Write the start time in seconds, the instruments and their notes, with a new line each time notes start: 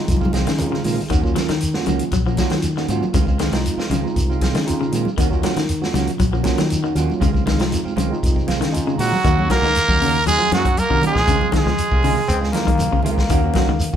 Already playing: tine electric piano G#3 C4 D#4 F4
0.08 fingered electric bass C2, kick, closed hi-hat, high conga, shekere
0.17 high conga
0.21 clean electric guitar G#3 C4 F4, kick, shekere
0.25 high conga
0.33 clean electric guitar D#3 G#3 C4 F4, kick, snare, closed hi-hat, high conga, shekere
0.40 high conga
0.47 fingered electric bass C#3, clean electric guitar D#3, snare, closed hi-hat, low conga, shekere
0.58 tine electric piano G#3 C4 D#4 F4, closed hi-hat, low conga, shekere
0.66 low conga
0.71 clean electric guitar C#3 G#3 C4 F4, snare, low conga
0.76 shekere
0.84 fingered electric bass A#2, clean electric guitar D#3 G#3 C4 F4, open hi-hat, low conga, shekere
0.93 low conga
1.01 low conga, shekere
1.10 fingered electric bass D#2, clean electric guitar D#3 A#3 C#4 F#4, kick, closed hi-hat, shekere
1.22 tine electric piano F#3 A#3 C#4 F4, clean electric guitar A#3 C#4, muted clean electric guitar stroke, kick
1.26 shekere
1.36 clean electric guitar D#3 F#3 A#3 C#4, snare, closed hi-hat, high conga, shekere
1.48 clean electric guitar D#3, fingered electric bass D#3, snare, closed hi-hat, shekere
1.60 closed hi-hat, shekere
1.73 tine electric piano F#3 A#3 C#4 F4, clean electric guitar A#3 C#4 F#4, snare, shekere
1.86 fingered electric bass C#2, clean electric guitar C#3 D#3 A#3 C#4 F#4, closed hi-hat, high conga, low conga, shekere
1.99 closed hi-hat, shekere
2.11 fingered electric bass A#1, clean electric guitar F#3, kick, closed hi-hat, high conga, shekere
2.26 clean electric guitar F3 A#3 C#4 F#4, shekere
2.36 clean electric guitar D#3 A#3 C#4 F#4, tine electric piano F#3 A#3 C#4 F4, muted fingered electric bass stroke, kick, snare, closed hi-hat, high conga, low conga, shekere
2.50 fingered electric bass D#3, clean electric guitar F#3, snare, closed hi-hat, shekere
2.62 closed hi-hat, shekere
2.77 clean electric guitar D#3 A#3 C#4 F#4, snare, shekere
2.88 fingered electric bass G#2, clean electric guitar D#3 A#3 C#4 F#4, tine electric piano F#3 A#3 C#4 F4, closed hi-hat, low conga, shekere
3.03 high conga, shekere
3.14 fingered electric bass C#2, clean electric guitar C#3 D#3 G#3 C4 F4, kick, closed hi-hat, shekere
3.27 clean electric guitar G#3 C4 F4, kick, shekere
3.39 clean electric guitar D#3 G#3 C4 F4, snare, closed hi-hat, high conga, shekere
3.51 fingered electric bass C2, clean electric guitar F3, tine electric piano G#3 C4 D#4 F4, snare, closed hi-hat, shekere
3.66 closed hi-hat, shekere
3.77 clean electric guitar G#3 C4 F4, muted fingered electric bass stroke, snare, shekere
3.90 fingered electric bass C#2, clean electric guitar C#3 D#3 G#3 C4 F4, closed hi-hat, high conga, low conga, shekere
4.02 tine electric piano G#3 C4 D#4 F4
4.07 shekere
4.16 fingered electric bass C2, kick, closed hi-hat, shekere
4.30 clean electric guitar G#3 C4 F4, shekere
4.41 clean electric guitar D#3 G#3 C4 F4, kick, snare, closed hi-hat, high conga, low conga, shekere
4.54 fingered electric bass C#3, clean electric guitar D#3, snare, closed hi-hat, high conga, shekere
4.65 tine electric piano G#3 C4 D#4 F4, closed hi-hat
4.70 shekere
4.80 clean electric guitar C#3 G#3 C4 F4, shekere
4.92 fingered electric bass A#2, clean electric guitar D#3 G#3 C4 F4, closed hi-hat, low conga, shekere
5.05 high conga, shekere
5.17 fingered electric bass D#2, clean electric guitar D#3 A#3 C#4 F#4, kick, closed hi-hat, shekere
5.30 tine electric piano F#3 A#3 C#4 F4, clean electric guitar A#3 C#4 F#4, kick, shekere
5.43 clean electric guitar D#3 F#3 A#3 C#4 F#4, snare, closed hi-hat, high conga, shekere
5.56 fingered electric bass D#3, clean electric guitar D#3, snare, closed hi-hat, shekere
5.69 closed hi-hat, shekere
5.81 tine electric piano F#3 A#3 C#4 F4, clean electric guitar A#3 F#4, muted clean electric guitar stroke, snare, shekere
5.94 fingered electric bass C#2, clean electric guitar C#3 D#3 A#3 C#4 F#4, snare, closed hi-hat, high conga, low conga, shekere
6.07 closed hi-hat, shekere
6.19 fingered electric bass A#1, clean electric guitar F#3, kick, closed hi-hat, high conga, shekere
6.31 clean electric guitar F3 A#3 C#4 F#4, shekere
6.43 clean electric guitar D#3 A#3 C#4 F#4, tine electric piano F#3 A#3 C#4 F4, muted fingered electric bass stroke, kick, snare, closed hi-hat, high conga, low conga, shekere
6.58 fingered electric bass D#3, clean electric guitar F#3, snare, closed hi-hat, high conga, shekere
6.70 closed hi-hat, shekere
6.83 clean electric guitar D#3 A#3 C#4 F#4, shekere
6.95 fingered electric bass D#2, clean electric guitar D#3 A#3 C#4 F#4, tine electric piano F#3 A#3 C#4 F4, closed hi-hat, low conga, shekere
7.10 high conga, shekere
7.20 fingered electric bass C#2, clean electric guitar C#3 D#3 G#3 C4 F4, kick, closed hi-hat, shekere
7.33 clean electric guitar G#3 C4 F4, kick, high conga, shekere
7.46 clean electric guitar D#3 G#3 C4 F4, kick, snare, closed hi-hat, high conga, shekere
7.58 fingered electric bass C2, clean electric guitar F3, tine electric piano G#3 C4 D#4 F4, snare, closed hi-hat, shekere
7.72 closed hi-hat, low conga, shekere
7.84 clean electric guitar G#3 C4 F4, muted fingered electric bass stroke, shekere
7.96 fingered electric bass C#2, clean electric guitar C#3 D#3 G#3 C4 F4, tine electric piano C5, closed hi-hat, high conga, low conga, shekere
8.10 tine electric piano G#3 C4 D#4 F4, shekere
8.23 fingered electric bass C2, tine electric piano D#5, kick, closed hi-hat, shekere
8.35 clean electric guitar G#3 C4, kick
8.40 shekere
8.47 clean electric guitar D#3 G#3 C4 F4, tine electric piano F5, kick, snare, closed hi-hat, high conga
8.51 shekere
8.60 fingered electric bass C#3, clean electric guitar D#3, snare, closed hi-hat
8.65 shekere
8.72 tine electric piano G#3 C4 D#4 F4 G#5, closed hi-hat
8.76 shekere
8.86 clean electric guitar C#3 G#3 C4 F4, shekere
8.98 fingered electric bass A#2, clean electric guitar D#3 G#3 C4 F4, trombone F#3, trumpet F#4, tine electric piano A#5, open hi-hat, low conga, shekere
9.13 high conga, shekere
9.24 fingered electric bass D#2, clean electric guitar D#3 A#3 F#4, muted clean electric guitar stroke, kick, closed hi-hat, low conga, shekere
9.39 clean electric guitar A#3 C#4 F#4, high conga
9.50 clean electric guitar D#3 F#3 A#3 F#4, trombone A#3, trumpet A#4, muted clean electric guitar stroke, kick, snare, closed hi-hat, high conga, shekere
9.62 fingered electric bass C#2, clean electric guitar D#3, snare
9.75 snare, closed hi-hat, shekere
9.88 fingered electric bass D#2, clean electric guitar A#3 C#4 F#4, kick, high conga
10.01 clean electric guitar C#3 D#3 A#3 C#4 F#4, open hi-hat, low conga, shekere
10.26 fingered electric bass D#2, clean electric guitar F#3, trombone G#3, trumpet G#4, closed hi-hat, shekere
10.38 clean electric guitar F3 A#3 C#4 F#4, high conga
10.51 fingered electric bass F#2, trombone F#3, clean electric guitar A#3 C#4 F#4, trumpet F#4, muted clean electric guitar stroke, snare, closed hi-hat, high conga, shekere
10.65 clean electric guitar F#3, kick, closed hi-hat, high conga
10.77 trombone A#3, trumpet A#4, closed hi-hat, high conga, shekere
10.89 fingered electric bass C3, clean electric guitar D#3 A#3 C#4 F#4, kick
11.01 clean electric guitar D#3 A#3 C#4 F#4, muted fingered electric bass stroke, closed hi-hat, high conga, low conga, shekere
11.05 trombone G#3, trumpet G#4
11.15 fingered electric bass A#1, kick, snare
11.27 fingered electric bass C#2, clean electric guitar C#3 D#3 C4 F4, muted clean electric guitar stroke, kick, closed hi-hat, shekere
11.40 clean electric guitar G#3 C4 F4, high conga
11.52 clean electric guitar D#3 G#3 C4 F4, muted fingered electric bass stroke, kick, snare, closed hi-hat, high conga, shekere
11.57 trombone G#3, trumpet G#4
11.66 fingered electric bass C#2, clean electric guitar F3, snare
11.78 closed hi-hat, shekere
11.92 fingered electric bass C2, clean electric guitar G#3 C4 F4, kick
12.03 clean electric guitar C#3 D#3 G#3 C4 F4, bass trombone G#3, open hi-hat, low conga, shekere
12.28 fingered electric bass C#2, bass trombone C4, closed hi-hat, shekere
12.41 clean electric guitar G#3 C4 F4, snare
12.52 clean electric guitar D#3 G#3 C4 F4, bass trombone A#3, snare, closed hi-hat, high conga, shekere
12.65 clean electric guitar D#3, kick, closed hi-hat, high conga
12.78 fingered electric bass C2, closed hi-hat, high conga, shekere
12.91 clean electric guitar C#3 G#3 C4 F4, kick
13.03 fingered electric bass C#2, clean electric guitar D#3 G#3 C4 F4, bass trombone A#3, closed hi-hat, low conga, shekere
13.18 kick, snare
13.29 fingered electric bass D#2, clean electric guitar D#3 A#3 C#4 F#4, kick, closed hi-hat, shekere
13.44 clean electric guitar A#3 C#4 F#4
13.54 clean electric guitar D#3 F#3 A#3 C#4 F#4, kick, snare, closed hi-hat, high conga, shekere
13.68 fingered electric bass C#2, clean electric guitar D#3
13.80 closed hi-hat, low conga, shekere
13.93 clean electric guitar F#4